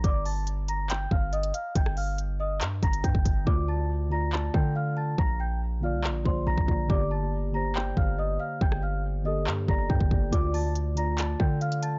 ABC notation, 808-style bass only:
X:1
M:4/4
L:1/16
Q:1/4=140
K:Gm
V:1 name="808-style bass" clef=bass
G,,,8- G,,,2 G,,,4 z2 | G,,,8 G,,2 G,,,2 G,, G,,, G,,,2 | D,,8- D,,2 D,6 | B,,,6- B,,, C,,3/2 B,,,3/2 B,,,2 B,,, B,,, B,,,2 |
G,,,8- G,,,2 G,,,4 z2 | G,,,8 G,,2 G,,,2 G,, G,,, G,,,2 | D,,8- D,,2 D,6 |]